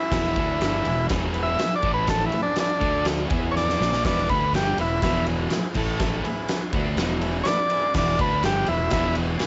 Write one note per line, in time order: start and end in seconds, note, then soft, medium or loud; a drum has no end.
0.00 1.07 E4 loud
0.10 0.35 E1 loud
0.10 0.36 E2 loud
0.10 0.36 B2 loud
0.10 0.27 B3 loud
0.10 0.27 E4 medium
0.10 0.28 G#4 loud
0.10 kick loud
0.10 snare loud
0.10 crash loud
0.15 0.37 E3 loud
0.35 0.59 D2 medium
0.35 0.60 D3 medium
0.35 0.61 A3 loud
0.35 0.52 B3 medium
0.35 0.61 D4 loud
0.35 0.52 E4 medium
0.35 0.52 G#4 loud
0.35 kick loud
0.35 ride medium
0.59 0.84 G1 medium
0.59 0.84 G2 medium
0.59 0.76 B3 medium
0.59 0.77 E4 medium
0.59 0.77 G#4 medium
0.59 snare loud
0.59 ride loud
0.63 0.85 D3 medium
0.63 0.86 G3 loud
0.83 1.09 E1 medium
0.83 1.05 E2 medium
0.83 1.05 B2 medium
0.83 1.00 B3 medium
0.83 1.01 E4 medium
0.83 1.01 G#4 loud
0.83 ride medium
1.09 1.56 E1 loud
1.09 1.57 E2 medium
1.09 1.59 B2 loud
1.09 1.59 E3 loud
1.09 1.26 B3 medium
1.09 1.27 E4 medium
1.09 1.26 G#4 loud
1.09 kick loud
1.09 snare loud
1.09 ride loud
1.33 1.50 B3 medium
1.33 1.51 E4 medium
1.33 1.50 B4 loud
1.33 ride medium
1.43 1.75 E5 loud
1.56 1.74 B3 loud
1.56 1.74 E4 loud
1.56 1.74 G#4 loud
1.56 muted distorted electric guitar stroke medium
1.56 snare loud
1.56 ride loud
1.61 muted fingered electric bass stroke soft
1.76 1.92 D5 loud
1.81 2.29 A1 medium
1.81 2.32 A2 medium
1.81 2.32 E3 loud
1.81 2.22 A3 medium
1.81 2.33 A3 loud
1.81 2.22 E4 medium
1.81 2.23 A4 medium
1.81 kick loud
1.81 ride medium
1.94 2.09 B4 loud
2.07 2.25 A4 medium
2.07 kick loud
2.07 snare loud
2.07 ride medium
2.26 2.70 B3 medium
2.26 2.41 E4 medium
2.30 2.71 E4 medium
2.30 2.71 G#4 medium
2.30 muted distorted electric guitar stroke medium
2.30 muted fingered electric bass stroke soft
2.30 ride medium
2.43 2.58 D4 loud
2.56 snare loud
2.56 ride medium
2.60 3.07 D4 medium
2.79 3.28 D2 medium
2.79 3.30 D3 medium
2.79 3.20 A3 medium
2.79 3.30 A3 medium
2.79 3.20 D4 medium
2.79 3.20 A4 loud
2.79 kick loud
2.79 ride medium
2.83 3.31 D4 medium
3.05 snare loud
3.05 ride loud
3.27 3.77 E2 medium
3.27 3.79 E3 medium
3.27 3.69 B3 loud
3.27 3.69 E4 loud
3.27 3.69 G#4 loud
3.27 kick loud
3.27 ride medium
3.33 3.80 B3 loud
3.33 3.80 E4 loud
3.51 3.55 C#5 medium
3.56 4.04 D5 loud
3.56 snare medium
3.69 snare medium
3.79 4.03 A#1 medium
3.79 4.04 A#2 loud
3.79 4.04 F3 medium
3.79 4.05 A#3 loud
3.79 3.96 B3 medium
3.79 3.97 E4 medium
3.79 3.97 G#4 medium
3.79 snare medium
3.93 snare medium
4.03 4.28 E1 loud
4.03 4.29 E2 loud
4.03 4.29 B2 loud
4.03 4.30 E3 loud
4.03 4.20 B3 medium
4.03 4.21 E4 medium
4.03 4.21 B4 loud
4.03 4.29 D5 medium
4.03 kick loud
4.03 snare loud
4.03 crash loud
4.29 4.52 D2 medium
4.29 4.53 D3 loud
4.29 4.54 A3 medium
4.29 4.45 B3 medium
4.29 4.55 D4 loud
4.29 4.46 E4 medium
4.29 4.46 G#4 medium
4.29 4.53 B4 loud
4.29 kick loud
4.29 ride medium
4.53 4.76 G1 loud
4.53 4.78 G2 loud
4.53 4.78 D3 loud
4.53 4.79 G3 loud
4.53 4.70 B3 medium
4.53 4.70 E4 medium
4.53 4.79 G4 loud
4.53 4.70 G#4 medium
4.53 snare loud
4.53 ride loud
4.78 5.01 E1 medium
4.78 4.99 E2 medium
4.78 4.99 B2 medium
4.78 4.94 B3 medium
4.78 4.94 E4 medium
4.78 5.02 E4 loud
4.78 4.95 B4 medium
4.78 ride medium
5.00 5.48 E1 loud
5.00 5.51 E2 loud
5.00 5.17 B3 medium
5.00 5.18 E4 medium
5.00 5.27 E4 loud
5.00 5.18 B4 medium
5.00 kick loud
5.00 snare loud
5.00 ride loud
5.05 5.52 B2 loud
5.05 5.52 E3 medium
5.26 5.43 B3 loud
5.26 5.43 E4 loud
5.26 5.43 G#4 loud
5.26 ride medium
5.50 5.67 B3 loud
5.50 5.68 E4 loud
5.50 5.68 G#4 loud
5.50 muted fingered electric bass stroke soft
5.50 muted distorted electric guitar stroke medium
5.50 snare loud
5.50 ride loud
5.74 6.21 A1 medium
5.74 6.24 A2 medium
5.74 6.24 E3 medium
5.74 6.15 A3 loud
5.74 6.25 A3 loud
5.74 kick loud
5.74 crash medium
5.78 6.16 E4 medium
5.78 6.17 A4 loud
6.00 kick loud
6.00 snare loud
6.22 6.63 B3 medium
6.22 6.63 E4 medium
6.22 6.63 G#4 loud
6.22 muted distorted electric guitar stroke medium
6.22 muted fingered electric bass stroke soft
6.22 ride medium
6.48 snare loud
6.48 ride loud
6.72 6.96 D2 medium
6.72 6.97 D3 medium
6.72 6.98 A3 medium
6.72 6.89 B3 medium
6.72 6.89 E4 medium
6.72 6.90 F#4 loud
6.72 kick loud
6.72 ride medium
6.76 6.99 D4 loud
6.97 7.42 E1 loud
6.97 7.46 E2 loud
6.97 7.46 B2 medium
6.97 7.47 E3 loud
6.97 7.13 B3 medium
6.97 7.14 E4 medium
6.97 7.14 B4 medium
6.97 snare loud
6.97 ride loud
7.21 7.38 B3 loud
7.21 7.37 E4 loud
7.21 7.38 G#4 loud
7.21 ride medium
7.44 7.61 B3 medium
7.44 7.62 E4 medium
7.44 7.62 B4 loud
7.44 7.47 C#5 medium
7.44 7.94 D5 loud
7.44 muted fingered electric bass stroke soft
7.44 snare loud
7.44 ride medium
7.48 muted distorted electric guitar stroke medium
7.70 7.86 B3 medium
7.70 7.86 E4 medium
7.70 7.87 G#4 medium
7.70 ride medium
7.94 8.17 E1 medium
7.94 8.18 E2 loud
7.94 8.18 B2 loud
7.94 8.19 E3 loud
7.94 8.11 B3 loud
7.94 8.11 E4 medium
7.94 8.12 F#4 loud
7.94 8.20 D5 medium
7.94 kick loud
7.94 snare loud
7.94 crash loud
8.18 8.42 D2 medium
8.18 8.42 D3 medium
8.18 8.43 A3 medium
8.18 8.34 B3 medium
8.18 8.43 D4 loud
8.18 8.35 E4 medium
8.18 8.35 F#4 medium
8.18 8.44 B4 loud
8.18 kick loud
8.18 ride medium
8.43 8.66 G1 loud
8.43 8.67 G2 medium
8.43 8.67 D3 loud
8.43 8.68 G3 loud
8.43 8.60 B3 medium
8.43 8.60 E4 medium
8.43 8.68 G4 loud
8.43 8.60 G#4 medium
8.43 snare loud
8.43 ride loud
8.66 8.91 E1 medium
8.66 8.87 E2 medium
8.66 8.87 B2 medium
8.66 8.83 B3 medium
8.66 8.83 E4 medium
8.66 8.92 E4 loud
8.66 8.83 B4 medium
8.66 ride medium
8.90 9.37 E1 loud
8.90 9.39 E2 loud
8.90 9.40 B2 loud
8.90 9.08 B3 medium
8.90 9.16 E4 loud
8.90 9.08 E4 medium
8.90 kick loud
8.90 snare loud
8.90 ride loud
8.94 9.41 E3 loud
8.94 9.09 G#4 medium
9.15 9.31 B3 loud
9.15 9.31 E4 medium
9.15 9.32 G#4 loud
9.15 ride medium
9.38 9.47 B3 loud
9.38 9.47 E4 loud
9.38 9.47 G#4 loud
9.38 muted distorted electric guitar stroke medium
9.38 muted fingered electric bass stroke soft
9.38 snare loud
9.38 ride loud